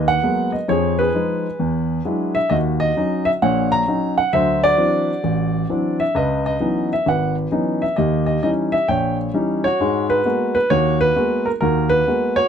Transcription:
0.00 0.17 D#2 medium
0.00 0.66 B4 medium
0.08 0.50 F#5 loud
0.23 0.54 F#3 soft
0.23 0.54 G#3 soft
0.23 0.55 A#3 soft
0.23 0.55 B3 medium
0.52 0.67 D#5 medium
0.68 1.08 F2 medium
0.68 1.08 F3 medium
0.68 0.99 G#4 medium
0.68 0.99 C#5 medium
0.99 2.32 G#4 medium
0.99 2.31 B4 medium
1.14 1.45 F3 soft
1.14 1.46 G#3 soft
1.14 1.46 D#4 medium
1.60 1.99 E2 medium
2.05 2.36 F#3 soft
2.05 2.36 G#3 soft
2.05 2.37 D4 soft
2.05 2.37 E4 medium
2.35 2.51 E5 medium
2.50 2.90 D#2 medium
2.50 3.38 F#4 medium
2.50 2.56 D#5 medium
2.80 3.27 D#5 loud
2.97 3.28 F#3 medium
2.97 3.28 C#4 soft
2.97 3.28 D#4 medium
3.25 3.30 E5 medium
3.42 3.81 A#1 medium
3.42 3.81 A#2 medium
3.42 4.30 C#5 medium
3.42 3.72 F#5 medium
3.72 4.14 A#5 loud
3.88 4.19 F#3 medium
3.88 4.19 C#4 soft
3.88 4.19 D#4 medium
4.18 4.32 F#5 medium
4.33 4.72 D2 medium
4.33 4.72 F#3 medium
4.33 5.21 C5 medium
4.33 4.60 E5 medium
4.64 5.96 F#4 medium
4.64 6.04 D5 loud
4.78 5.09 E3 medium
4.78 5.09 F#3 soft
4.78 5.09 C4 soft
4.78 5.10 D4 medium
5.24 5.63 A1 medium
5.69 6.01 E3 medium
5.69 6.01 F#3 soft
5.69 6.01 C4 soft
5.69 6.01 D4 medium
6.00 6.16 E5 medium
6.15 6.54 C#2 medium
6.15 7.03 B4 medium
6.15 6.45 D#5 medium
6.46 6.88 D#5 medium
6.60 6.91 E3 medium
6.60 6.92 F#3 soft
6.60 6.92 B3 soft
6.60 6.92 C#4 soft
6.60 6.92 D#4 medium
6.93 7.06 E5 medium
7.06 7.45 G#1 medium
7.06 7.94 B4 medium
7.06 7.35 F#5 medium
7.51 7.83 E3 medium
7.51 7.83 F#3 soft
7.51 7.83 B3 soft
7.51 7.83 C#4 soft
7.51 7.83 D#4 medium
7.82 7.96 E5 medium
7.96 8.37 D#2 medium
7.96 8.84 G4 medium
7.96 8.24 D#5 medium
8.26 8.41 D#5 medium
8.43 8.74 E3 medium
8.43 8.74 G3 soft
8.43 8.74 C#4 soft
8.43 8.74 D#4 medium
8.43 8.50 D#5 medium
8.72 8.87 E5 medium
8.88 9.28 A#1 medium
8.88 9.63 C#5 medium
8.88 9.16 G5 medium
9.34 9.65 E3 medium
9.34 9.65 G3 soft
9.34 9.65 C#4 soft
9.34 9.65 D#4 medium
9.64 10.25 F#4 medium
9.64 10.06 C#5 medium
9.80 10.19 G#2 medium
9.80 10.19 G#3 medium
10.10 10.53 B4 medium
10.25 10.56 G#3 medium
10.25 10.56 A#3 soft
10.25 10.57 B3 soft
10.25 10.56 F#4 medium
10.55 10.69 B4 medium
10.70 11.10 D#2 medium
10.70 11.15 F#4 medium
10.70 10.98 C#5 loud
11.01 11.47 B4 loud
11.16 11.47 G#3 medium
11.16 11.47 A#3 medium
11.16 11.47 B3 soft
11.16 11.47 F#4 medium
11.46 11.51 A#4 medium
11.61 12.01 D#2 medium
11.61 12.07 F#4 medium
11.61 11.88 A#4 medium
11.89 12.37 B4 loud
12.07 12.38 G#3 medium
12.07 12.38 A#3 soft
12.07 12.38 B3 soft
12.07 12.36 F#4 medium
12.36 12.48 F#4 medium
12.36 12.48 C#5 loud

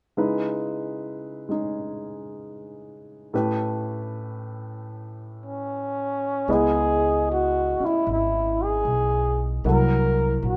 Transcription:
0.17 3.33 C#3 soft
0.17 1.47 G#3 soft
0.17 1.49 D#4 soft
0.17 3.33 E4 soft
0.17 3.33 B4 soft
1.49 3.32 G#3 soft
1.49 3.33 C#4 soft
1.49 3.33 D#4 soft
1.49 3.34 G#4 soft
3.33 6.48 A2 soft
3.33 6.48 A3 soft
3.33 6.48 C#4 soft
3.33 6.48 G4 soft
3.33 6.49 B4 soft
5.46 6.54 C#4 medium
6.48 7.76 C#2 medium
6.48 9.65 G#3 soft
6.48 9.65 B3 soft
6.48 7.82 E4 soft
6.48 9.65 D#5 soft
6.52 7.29 G#4 medium
7.32 7.87 F#4 medium
7.80 9.64 C#4 soft
7.80 9.64 E4 soft
7.80 muted upright bass stroke soft
7.85 8.09 E4 medium
8.07 8.82 G#1 medium
8.12 8.65 E4 medium
8.64 9.49 G#4 medium
8.85 9.60 B1 medium
9.64 10.39 C2 medium
9.64 10.57 F#3 soft
9.64 10.57 A#3 soft
9.64 10.57 E4 soft
9.64 10.57 F#4 soft
9.64 10.41 A#4 medium
10.43 10.57 A#1 medium
10.47 10.57 F#4 medium

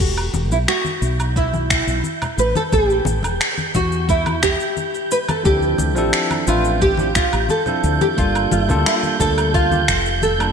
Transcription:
0.00 0.28 E1 medium
0.00 0.51 F#4 medium
0.00 10.52 G6 medium
0.00 kick loud
0.00 crash medium
0.00 shaker soft
0.18 low woodblock medium
0.18 shaker soft
0.33 0.51 E1 medium
0.33 high conga medium
0.33 shaker medium
0.51 0.65 B1 medium
0.51 0.57 E4 medium
0.51 shaker soft
0.68 1.38 F#4 medium
0.68 finger snap medium
0.68 shaker soft
0.85 high conga medium
0.85 shaker soft
1.01 1.82 B1 medium
1.01 shaker medium
1.20 low woodblock medium
1.20 shaker soft
1.36 2.42 E4 medium
1.36 kick loud
1.36 shaker soft
1.54 high conga medium
1.54 shaker soft
1.70 finger snap medium
1.70 kick loud
1.70 shaker medium
1.87 2.01 B1 medium
1.87 shaker soft
2.04 high conga medium
2.04 shaker soft
2.22 low conga medium
2.22 low woodblock medium
2.22 shaker soft
2.37 2.52 A1 medium
2.37 2.56 B4 medium
2.37 shaker medium
2.55 2.61 A4 medium
2.55 high conga medium
2.55 shaker soft
2.72 3.00 A1 medium
2.72 3.75 G4 loud
2.72 kick loud
2.72 shaker soft
2.90 shaker soft
3.05 3.24 A1 medium
3.05 high conga loud
3.05 shaker medium
3.23 3.37 E1 medium
3.23 low conga medium
3.23 low woodblock medium
3.23 shaker soft
3.41 finger snap medium
3.41 shaker soft
3.58 high conga medium
3.58 shaker soft
3.75 4.55 E2 medium
3.75 4.09 F#4 medium
3.75 kick medium
3.75 low conga medium
3.75 shaker medium
3.92 shaker soft
4.09 4.43 E4 medium
4.09 kick loud
4.09 shaker soft
4.26 high conga medium
4.26 low woodblock medium
4.26 shaker soft
4.43 5.11 G4 medium
4.43 finger snap medium
4.43 kick medium
4.43 shaker medium
4.60 shaker soft
4.77 high conga medium
4.77 shaker soft
4.95 shaker soft
5.11 5.17 B4 loud
5.11 shaker medium
5.28 5.45 A4 medium
5.28 high conga medium
5.28 low woodblock medium
5.28 shaker soft
5.43 5.73 D2 medium
5.43 5.92 F3 medium
5.43 5.92 C4 medium
5.43 5.92 D4 medium
5.43 5.93 E4 medium
5.43 6.44 G4 medium
5.43 5.93 A4 medium
5.43 kick loud
5.43 shaker soft
5.62 shaker soft
5.78 5.97 D2 medium
5.78 high conga loud
5.78 shaker medium
5.95 6.10 A1 medium
5.95 6.43 F3 medium
5.95 6.43 C4 medium
5.95 6.43 D4 medium
5.95 6.44 E4 medium
5.95 6.44 A4 loud
5.95 shaker soft
6.13 finger snap medium
6.13 shaker soft
6.31 high conga medium
6.31 low woodblock medium
6.31 shaker soft
6.46 7.28 A1 medium
6.46 6.94 F3 medium
6.46 6.95 C4 medium
6.46 6.95 D4 medium
6.46 6.81 F4 medium
6.46 6.96 B4 medium
6.46 6.95 E5 medium
6.46 shaker medium
6.65 shaker soft
6.81 7.15 G4 loud
6.81 kick loud
6.81 shaker soft
6.97 7.07 F3 medium
6.97 7.08 C4 medium
6.97 7.08 D4 medium
6.97 7.08 E4 medium
6.97 7.09 G4 medium
6.97 high conga medium
6.97 shaker soft
7.15 7.50 F4 medium
7.15 finger snap medium
7.15 kick loud
7.15 shaker medium
7.33 7.46 A1 medium
7.33 low woodblock medium
7.33 shaker soft
7.49 8.01 A4 loud
7.49 high conga medium
7.49 shaker soft
7.66 8.13 F3 medium
7.66 8.13 C4 medium
7.66 8.14 D4 medium
7.66 8.14 E4 medium
7.66 8.15 A4 medium
7.66 low conga medium
7.66 shaker soft
7.84 7.98 D2 medium
7.84 shaker medium
8.01 8.06 G4 medium
8.01 high conga loud
8.01 shaker soft
8.17 8.46 G1 medium
8.17 8.65 G3 medium
8.17 8.65 A#3 medium
8.17 8.65 D4 medium
8.17 8.53 F4 medium
8.17 8.65 F4 medium
8.17 8.66 A4 medium
8.17 kick loud
8.17 shaker soft
8.35 low woodblock medium
8.35 shaker soft
8.51 8.71 G1 medium
8.51 8.87 E4 medium
8.51 high conga loud
8.51 shaker medium
8.68 8.83 D2 medium
8.68 9.16 G3 medium
8.68 9.16 A#3 medium
8.68 9.16 D4 medium
8.68 9.16 F4 medium
8.68 9.17 A4 loud
8.68 low conga medium
8.68 shaker soft
8.86 9.20 F4 medium
8.86 finger snap medium
8.86 shaker soft
9.03 high conga medium
9.03 shaker soft
9.19 9.88 D2 medium
9.19 9.67 G3 medium
9.19 9.67 A#3 medium
9.19 9.68 D4 medium
9.19 9.68 F4 medium
9.19 9.54 A4 medium
9.19 9.68 A4 medium
9.19 kick medium
9.19 low conga medium
9.19 shaker medium
9.38 low woodblock medium
9.38 shaker soft
9.54 10.22 F4 medium
9.54 kick loud
9.54 shaker soft
9.70 9.80 G3 medium
9.70 9.80 A#3 medium
9.70 9.80 D4 medium
9.70 9.81 F4 medium
9.70 9.81 G4 medium
9.70 high conga medium
9.70 shaker soft
9.88 10.52 F1 medium
9.88 finger snap medium
9.88 kick medium
9.88 shaker medium
10.06 shaker soft
10.22 10.52 A4 medium
10.22 high conga medium
10.22 shaker soft
10.39 10.52 G3 medium
10.39 10.52 A#3 medium
10.39 10.52 D4 medium
10.39 10.52 F4 medium
10.39 10.52 A4 medium
10.39 low woodblock medium
10.39 shaker soft

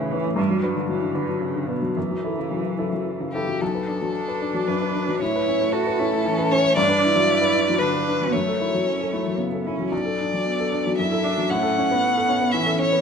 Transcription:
0.00 0.35 A2 soft
0.00 0.13 C#3 soft
0.00 0.41 E3 soft
0.00 0.25 A3 soft
0.00 0.13 C#4 soft
0.00 0.13 B4 soft
0.11 0.35 E3 medium
0.11 0.24 C#4 soft
0.11 0.24 B4 soft
0.25 0.38 A3 soft
0.35 1.91 G2 soft
0.35 0.64 G3 soft
0.50 0.71 F#3 soft
0.63 0.89 F#3 soft
0.63 0.75 D4 soft
0.63 0.75 B4 soft
0.76 0.97 D3 soft
0.89 1.16 E3 soft
0.89 1.10 F#3 soft
1.02 1.23 D3 soft
1.14 1.43 D3 soft
1.14 1.27 D4 soft
1.14 1.27 B4 soft
1.29 1.72 F#3 soft
1.42 1.69 C#3 soft
1.55 1.77 D3 soft
1.68 1.98 B2 soft
1.68 1.81 D4 soft
1.68 1.81 B4 soft
1.83 1.96 F#3 soft
1.96 3.57 F#2 soft
1.96 3.40 E3 soft
2.11 2.32 F#3 soft
2.24 2.36 E4 soft
2.24 2.37 A4 soft
2.38 2.60 C#3 soft
2.51 2.73 F#3 soft
2.64 2.87 C#3 soft
2.79 2.91 E4 soft
2.79 2.91 A4 soft
2.93 3.37 F#3 soft
3.20 3.42 C#3 soft
3.33 3.47 E4 soft
3.33 3.62 G4 soft
3.33 3.47 A4 soft
3.48 3.61 F#3 soft
3.61 5.17 B1 soft
3.61 4.69 A4 soft
3.75 3.96 B4 soft
3.88 4.09 D4 soft
4.02 4.44 F#3 soft
4.14 5.22 D4 soft
4.28 4.49 B4 soft
4.42 4.63 D4 soft
4.54 4.76 F#3 soft
4.67 4.89 F#2 soft
4.67 5.19 B4 soft
4.82 5.03 B4 soft
4.95 5.16 D4 soft
5.09 5.21 F#3 soft
5.20 6.74 A2 soft
5.20 5.74 E4 medium
5.20 5.73 C#5 medium
5.36 5.56 B4 soft
5.48 5.69 C#4 soft
5.61 6.03 A3 soft
5.72 6.00 F#4 medium
5.72 6.53 A4 medium
5.87 6.07 B4 soft
5.99 6.20 C#4 soft
5.99 6.28 E4 medium
6.12 6.33 A3 soft
6.25 6.46 E3 soft
6.25 6.77 C#4 medium
6.38 6.59 B4 soft
6.51 6.72 C#4 soft
6.51 6.76 C#5 medium
6.64 6.77 A3 soft
6.76 8.29 G2 medium
6.76 7.06 D4 medium
6.76 7.80 D5 medium
6.89 7.10 B4 soft
7.03 7.23 D4 soft
7.03 7.79 E4 medium
7.16 7.56 F#3 soft
7.42 7.62 B4 soft
7.55 7.75 D4 soft
7.69 7.89 F#3 soft
7.79 8.02 D3 soft
7.79 8.35 D4 soft
7.79 8.33 B4 medium
7.94 8.15 B4 soft
8.08 8.28 D4 soft
8.22 8.34 F#3 soft
8.32 9.89 F#2 soft
8.32 8.81 A3 soft
8.32 9.38 C#5 medium
8.48 8.68 A4 soft
8.61 8.82 E4 soft
8.74 9.16 F#3 soft
8.84 9.14 C#4 soft
9.01 9.21 A4 soft
9.13 9.40 A3 soft
9.13 9.34 E4 soft
9.27 9.47 F#3 soft
9.38 9.60 C#3 soft
9.38 9.69 B3 soft
9.53 9.74 A4 soft
9.67 9.93 C#4 soft
9.67 9.87 E4 soft
9.79 9.92 F#3 soft
9.92 11.46 B1 soft
9.92 10.94 D5 soft
10.05 10.27 A4 soft
10.21 10.41 D4 soft
10.34 10.75 F#3 soft
10.45 11.02 B3 soft
10.60 10.80 A4 soft
10.72 10.93 D4 soft
10.87 11.07 F#3 soft
10.98 11.19 F#2 soft
10.98 11.25 E4 soft
10.98 11.51 E5 medium
11.12 11.32 A4 soft
11.24 11.52 D4 soft
11.24 11.45 D4 soft
11.38 11.50 F#3 soft
11.49 13.01 A2 medium
11.49 12.03 C#4 medium
11.49 12.52 F#5 medium
11.63 11.83 A4 soft
11.78 11.98 C#4 soft
11.91 12.31 B3 soft
12.01 12.54 B3 soft
12.17 12.36 A4 soft
12.29 12.48 C#4 soft
12.41 12.61 B3 soft
12.51 12.74 E3 soft
12.51 13.01 C#4 soft
12.51 12.78 E5 medium
12.66 12.87 A4 soft
12.79 13.00 C#4 soft
12.79 13.01 C#5 medium
12.92 13.01 B3 soft

